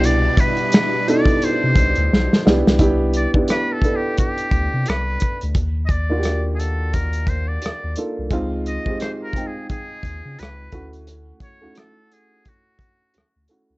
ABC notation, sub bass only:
X:1
M:4/4
L:1/16
Q:"Swing 16ths" 1/4=87
K:C
V:1 name="Sub bass" clef=bass
C,,2 z6 z C, C,, D,, B,,, z C,, C,, | C,,3 D,, z6 D,, C, C,,2 z D,, | _E,,12 E,, E,, z C,, | _D,,3 _E,, z6 E,, _D, D,,2 =D,,2- |
D,,2 z D,, z8 D,, D,, z ^C,, |]